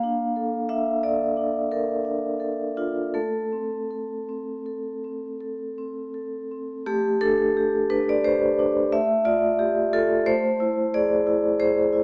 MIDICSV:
0, 0, Header, 1, 2, 480
1, 0, Start_track
1, 0, Key_signature, 0, "minor"
1, 0, Tempo, 675676
1, 1712, Tempo, 750939
1, 2185, Time_signature, 5, 2, 24, 8
1, 3632, Tempo, 729927
1, 4592, Tempo, 684932
1, 6032, Tempo, 668896
1, 8263, End_track
2, 0, Start_track
2, 0, Title_t, "Vibraphone"
2, 0, Program_c, 0, 11
2, 0, Control_c, 0, 64, 127
2, 0, Note_on_c, 0, 58, 60
2, 0, Note_on_c, 0, 77, 90
2, 24, Note_on_c, 0, 62, 45
2, 257, Note_on_c, 0, 69, 40
2, 405, Note_off_c, 0, 62, 0
2, 491, Note_on_c, 0, 76, 68
2, 493, Note_on_c, 0, 62, 38
2, 500, Note_off_c, 0, 77, 0
2, 640, Note_off_c, 0, 69, 0
2, 734, Note_off_c, 0, 76, 0
2, 734, Note_on_c, 0, 74, 66
2, 739, Note_on_c, 0, 69, 41
2, 877, Note_off_c, 0, 62, 0
2, 974, Note_on_c, 0, 62, 39
2, 1121, Note_off_c, 0, 69, 0
2, 1214, Note_off_c, 0, 74, 0
2, 1218, Note_on_c, 0, 70, 60
2, 1219, Note_on_c, 0, 69, 40
2, 1361, Note_off_c, 0, 62, 0
2, 1455, Note_on_c, 0, 62, 37
2, 1612, Note_off_c, 0, 69, 0
2, 1704, Note_on_c, 0, 69, 35
2, 1849, Note_off_c, 0, 62, 0
2, 1943, Note_on_c, 0, 65, 54
2, 1944, Note_on_c, 0, 62, 39
2, 1946, Note_off_c, 0, 70, 0
2, 2085, Note_off_c, 0, 69, 0
2, 2157, Note_off_c, 0, 58, 0
2, 2178, Note_on_c, 0, 69, 59
2, 2183, Note_on_c, 0, 57, 48
2, 2184, Note_off_c, 0, 65, 0
2, 2185, Note_off_c, 0, 62, 0
2, 2200, Control_c, 0, 64, 0
2, 2312, Control_c, 0, 64, 127
2, 2424, Note_on_c, 0, 60, 35
2, 2660, Note_off_c, 0, 69, 0
2, 2668, Note_on_c, 0, 69, 33
2, 2816, Note_off_c, 0, 60, 0
2, 2912, Note_on_c, 0, 60, 36
2, 3057, Note_off_c, 0, 69, 0
2, 3150, Note_on_c, 0, 69, 37
2, 3297, Note_off_c, 0, 60, 0
2, 3394, Note_on_c, 0, 60, 33
2, 3534, Note_off_c, 0, 69, 0
2, 3627, Note_on_c, 0, 69, 36
2, 3777, Note_off_c, 0, 60, 0
2, 3873, Note_on_c, 0, 60, 34
2, 4016, Note_off_c, 0, 69, 0
2, 4110, Note_on_c, 0, 69, 34
2, 4257, Note_off_c, 0, 60, 0
2, 4356, Note_on_c, 0, 60, 32
2, 4496, Note_off_c, 0, 69, 0
2, 4563, Note_off_c, 0, 57, 0
2, 4586, Note_on_c, 0, 57, 73
2, 4586, Note_on_c, 0, 67, 92
2, 4592, Note_off_c, 0, 60, 0
2, 4604, Control_c, 0, 64, 0
2, 4736, Control_c, 0, 64, 127
2, 4828, Note_on_c, 0, 62, 51
2, 4828, Note_on_c, 0, 69, 94
2, 4832, Note_off_c, 0, 67, 0
2, 5079, Note_on_c, 0, 67, 55
2, 5215, Note_off_c, 0, 62, 0
2, 5311, Note_off_c, 0, 69, 0
2, 5311, Note_on_c, 0, 62, 50
2, 5311, Note_on_c, 0, 71, 80
2, 5433, Note_off_c, 0, 71, 0
2, 5446, Note_on_c, 0, 74, 89
2, 5461, Note_off_c, 0, 67, 0
2, 5553, Note_on_c, 0, 72, 92
2, 5554, Note_on_c, 0, 67, 58
2, 5561, Note_off_c, 0, 74, 0
2, 5697, Note_off_c, 0, 62, 0
2, 5797, Note_on_c, 0, 62, 50
2, 5936, Note_off_c, 0, 67, 0
2, 6000, Note_off_c, 0, 57, 0
2, 6029, Note_off_c, 0, 72, 0
2, 6029, Note_on_c, 0, 76, 90
2, 6030, Note_on_c, 0, 57, 68
2, 6032, Note_off_c, 0, 62, 0
2, 6045, Control_c, 0, 64, 0
2, 6163, Control_c, 0, 64, 127
2, 6262, Note_on_c, 0, 65, 56
2, 6264, Note_on_c, 0, 74, 73
2, 6271, Note_off_c, 0, 76, 0
2, 6507, Note_on_c, 0, 67, 56
2, 6654, Note_off_c, 0, 65, 0
2, 6751, Note_off_c, 0, 74, 0
2, 6751, Note_on_c, 0, 65, 57
2, 6753, Note_on_c, 0, 69, 85
2, 6896, Note_off_c, 0, 67, 0
2, 6967, Note_off_c, 0, 57, 0
2, 6990, Note_on_c, 0, 72, 106
2, 6991, Note_on_c, 0, 57, 70
2, 6994, Note_off_c, 0, 65, 0
2, 6995, Note_off_c, 0, 69, 0
2, 7011, Control_c, 0, 64, 0
2, 7131, Control_c, 0, 64, 127
2, 7233, Note_on_c, 0, 64, 54
2, 7477, Note_on_c, 0, 74, 83
2, 7479, Note_off_c, 0, 72, 0
2, 7479, Note_on_c, 0, 68, 55
2, 7623, Note_off_c, 0, 64, 0
2, 7711, Note_on_c, 0, 64, 52
2, 7860, Note_off_c, 0, 68, 0
2, 7947, Note_on_c, 0, 72, 90
2, 7949, Note_on_c, 0, 68, 51
2, 7954, Note_off_c, 0, 74, 0
2, 8094, Note_off_c, 0, 64, 0
2, 8184, Note_on_c, 0, 64, 51
2, 8263, Note_off_c, 0, 57, 0
2, 8263, Note_off_c, 0, 64, 0
2, 8263, Note_off_c, 0, 68, 0
2, 8263, Note_off_c, 0, 72, 0
2, 8263, End_track
0, 0, End_of_file